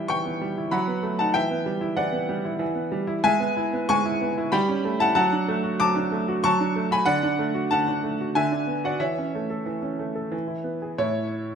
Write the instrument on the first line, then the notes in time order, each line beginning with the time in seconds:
grand piano
Already playing: E3 G3 B3 E4 E5 G5
0.08 E3 G5 C#6
0.25 B3
0.41 G3
0.57 E4
0.71 F#3 F#5 B5
0.87 B3
1.03 A3
1.19 D#4 F#5 A5
1.34 E3 E5 G5
1.51 B3
1.66 G3
1.81 E4
1.96 E3 D5 F#5
2.12 B3
2.29 G3
2.45 E4
2.59 E3
2.75 B3
2.92 G3
3.07 E4
3.24 G#3 E5 G#5
3.40 B3
3.57 E4
3.73 B3
3.89 G#3 G#5 C#6
4.05 E4
4.21 B3
4.38 E4
4.52 G3 G5 B5
4.69 C#4
4.85 A3
5.00 E4 F#5 A5
5.15 F#3 F#5 A5
5.32 D4
5.48 A3
5.64 F#4
5.80 F#3 A5 D6
5.96 D4
6.12 A3
6.28 F#4
6.44 F#3 A5 C#6
6.60 D4
6.76 A3
6.91 F#4 G#5 B5
7.06 D3 D5 F#5
7.23 D4
7.39 A3
7.55 F#4
7.71 D3 F#5 A5
7.88 D4
8.03 A3
8.21 F#4
8.35 D3 E5 G#5
8.52 D4
8.67 B3
8.84 F#4 D5 F#5
9.00 E3 C#5 E5
9.18 C#4
9.35 A3
9.50 A4
9.66 E3
9.82 C#4
9.99 A3
10.15 A4
10.32 E3
10.48 E4
10.64 B3
10.82 G#4
10.98 A2 E4 C#5